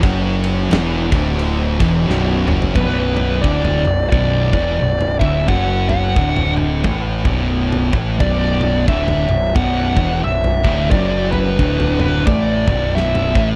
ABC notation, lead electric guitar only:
X:1
M:4/4
L:1/16
Q:"Swing" 1/4=88
K:Bm
V:1 name="Lead electric guitar"
z16 | B4 d4 d6 e2 | f2 f4 z8 z2 | d4 e4 f4 e4 |
d2 B4 B2 d4 e3 z |]